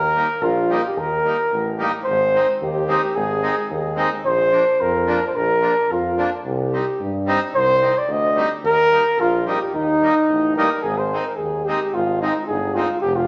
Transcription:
Already playing: D#2 A#4
0.15 G3 A#3 D#4
0.41 A#1 F4
0.69 G3 A#3 D#4
0.86 G4
0.96 D#2 A#4
1.24 G3 A#3 D#4
1.51 A1
1.78 G3 A#3 D#4
2.04 G#1 C5
2.34 G#3 C4 D#4
2.61 D#2 G4
2.87 G#3 C4 D#4
3.15 G#1 G#4
3.42 G#3 C4 D#4
3.71 D#2 G#4
3.95 G#3 C4 D#4
4.25 A#1 C5
4.51 F3 A#3 D4
4.81 F2 A#4
5.06 F3 A#3 D4
5.28 C5
5.35 A#1 A#4
5.61 F3 A#3 D4
5.89 F2 F4
6.17 F3 A#3 D4
6.44 C2 G4
6.72 G3 C4 D#4
7.00 G2
7.26 G3 C4 D#4
7.54 C2 C5
7.82 G3 C4 D#4
7.98 D5
8.08 D2 D#5
8.35 G3 C4 D#4
8.63 D#2 A#4
8.91 G3 A#3 D#4
9.18 A#1 F4
9.46 G3 A#3 D#4 G4
9.74 D#2 D#4
10.02 G3 A#3 D#4
10.28 A1
10.56 G3 A#3 D#4 A#4
10.83 G#1 G#4
10.98 C5
11.13 G#3 C4 D#4
11.25 A#4
11.36 D#2 G#4
11.65 G#3 C4 D#4 G4
11.93 G#1 F4
12.21 G#3 C4 D#4
12.47 G1 G#4
12.74 G#3 C4 D#4 F4
13.01 F1 G4
13.16 F4

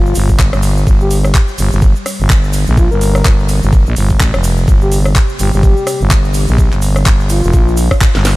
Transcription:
Already playing: G1 G3 A#3 F4
0.06 shaker
0.15 G1, open hi-hat, ride, shaker
0.29 kick, shaker
0.39 kick, clap, shaker
0.53 G1, cross-stick, shaker
0.62 open hi-hat, ride, shaker
0.77 shaker
0.87 G1 C4, kick, shaker
1.01 G4, shaker
1.11 open hi-hat, ride, shaker
1.24 cross-stick, shaker
1.35 kick, clap, shaker
1.48 shaker
1.58 G1, open hi-hat, ride, shaker
1.72 G1, shaker
1.82 kick, shaker
1.96 shaker
2.06 cross-stick, open hi-hat, ride, shaker
2.20 G1, shaker
2.30 kick, clap, shaker
2.44 shaker
2.53 open hi-hat, ride, shaker
2.67 A#1, shaker
2.77 F4, kick, shaker
2.91 G1 A#4, shaker
3.01 open hi-hat, ride, shaker
3.15 cross-stick, shaker
3.25 G1, kick, clap, shaker
3.39 shaker
3.48 open hi-hat, ride, shaker
3.63 G1, shaker
3.73 kick, shaker
3.86 A#1, shaker
3.96 G1, open hi-hat, ride, shaker
4.10 kick, shaker
4.20 A1, kick, clap, shaker
4.34 F1, cross-stick, shaker
4.44 open hi-hat, ride, shaker
4.57 shaker
4.68 G1, kick, shaker
4.82 G4, shaker
4.92 open hi-hat, ride, shaker
5.05 cross-stick, shaker
5.15 kick, clap, shaker
5.29 shaker
5.39 G1 G4, open hi-hat, ride, shaker
5.53 G1 G4, shaker
5.63 G4, kick, shaker
5.77 shaker
5.87 cross-stick, open hi-hat, ride, shaker
6.01 G1, shaker
6.11 kick, clap, shaker
6.25 shaker
6.34 open hi-hat, ride, shaker
6.48 A#1, shaker
6.58 kick, shaker
6.72 G1, clap, shaker
6.82 open hi-hat, ride, shaker
6.96 cross-stick, shaker
7.05 G1, kick, clap, shaker
7.20 shaker
7.29 F4, open hi-hat, ride, shaker
7.44 F1, shaker
7.53 A#1, kick, shaker
7.68 shaker
7.77 open hi-hat, ride, shaker
7.91 kick, cross-stick, shaker
8.01 kick, clap, shaker
8.15 G1, snare, shaker
8.25 snare, open hi-hat, ride, shaker

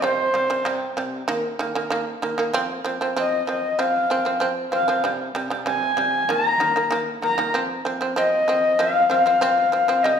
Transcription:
0.02 C3 G3 C5
0.34 C3 G3
0.50 C3 G3
0.65 C3 G3
0.97 C3 G3
1.28 D#3 A#3
1.59 D#3 A#3
1.75 D#3 A#3
1.90 D#3 A#3
2.22 D#3 A#3
2.38 D#3 A#3
2.53 F3 C4
2.84 F3 C4
3.01 F3 C4
3.16 F3 C4 D#5
3.47 F3 C4 D#5
3.79 F3 C4 F5
4.10 F3 C4
4.25 F3 C4
4.40 F3 C4
4.72 F3 C4 F5
4.88 F3 C4
5.04 C3 G3
5.35 C3 G3
5.50 C3 G3
5.66 C3 G3 G#5
5.97 C3 G3
6.29 D#3 A#3 A#5
6.60 D#3 A#3
6.76 D#3 A#3
6.91 D#3 A#3
7.22 D#3 A#3 A#5
7.38 D#3 A#3
7.54 F3 C4
7.85 F3 C4
8.01 F3 C4
8.16 F3 C4 D#5
8.48 F3 C4
8.79 F3 C4 F5
9.10 F3 C4 F5
9.26 F3 C4
9.41 F3 C4
9.72 F3 C4
9.88 F3 C4
10.03 C3 G3 D#5

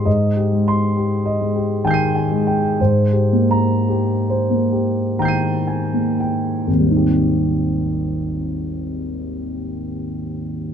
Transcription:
0.05 G#2 D#5
0.37 G4
0.52 G#3
0.68 C6
0.97 G4
1.26 D#5
1.41 G#3
1.56 G4
1.84 D#3 G5 G#5 G6
1.91 C7 D#7
2.15 G#5
2.32 G#3
2.47 G5
2.80 G#2 C5
3.13 G4
3.33 A#3
3.51 A#5
3.89 G4
4.30 C5
4.50 A#3
4.73 G4
5.19 D#3 G5 A#5 G6
5.25 C7 D#7
5.67 G#5
5.93 A#3
6.20 G5
6.67 G#1
6.73 D#2
6.79 G3
6.85 C4
6.91 D#4
6.97 G4

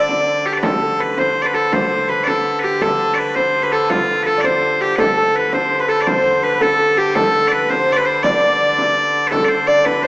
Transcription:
Already playing: D3 A4 C5 D5
0.00 D5
0.09 frame drum
0.46 G4
0.53 D5
0.57 B4
0.63 D3 A4, frame drum
0.82 A4
0.99 B4
1.18 C5, frame drum
1.36 frame drum
1.42 B4 D5
1.54 A4
1.72 C5, frame drum
2.09 B4
2.24 D5, frame drum
2.28 A4
2.46 frame drum
2.60 B4
2.64 G4
2.81 A4, frame drum
3.14 B4 D5
3.35 C5, frame drum
3.54 frame drum
3.63 B4
3.72 A4
3.90 F4, frame drum
4.23 A4 B4
4.38 D5
4.44 C5, frame drum
4.81 G4, frame drum
4.96 D3 A4 B4, frame drum
5.17 A4
5.35 B4
5.52 C5, frame drum
5.71 frame drum
5.80 B4
5.88 A4
6.01 D5
6.07 C5, frame drum
6.42 B4
6.61 A4, frame drum
6.78 A4, frame drum
6.98 G4
7.15 A4, frame drum
7.34 A4
7.48 B4 D5
7.53 B4
7.69 C5, frame drum
7.89 D5, frame drum
7.96 B4
8.05 C5
8.23 D5, frame drum
8.78 frame drum
9.27 A4 B4
9.31 D3 A4, frame drum
9.45 C5 D5
9.67 D5
9.85 B4, frame drum
10.03 C5

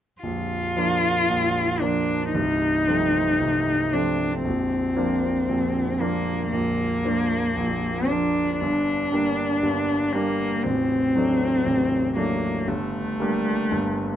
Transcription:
0.22 A#0 A#1 F4
0.77 F3 A#3 D4
1.29 A#0 A#1
1.81 F3 A#3 D4
2.34 C1 C2 D#4
2.87 F3 A3 C4
3.41 C1 C2
3.93 F3 A3 C4 D4
4.45 A#0 A#1 C4
4.96 F3 A#3 D4
5.49 A#0 A#1
6.00 F3 A#3 D4
6.50 A#0 A#1 A#3
7.05 F3 A#3 D4
7.56 A#0 A#1
8.08 F3 A#3 D4
8.60 G1 G2 D4
9.12 G3 A#3 D4
9.63 G1 G2
10.12 G3 A#3 D4
10.63 A0 A1 C4
11.15 F#3 A3 D4
11.66 A0 A1
12.16 F#3 A3 A#3 D4
12.67 G1 G2 A3
13.20 G3 A#3 D4
13.71 G1 G2

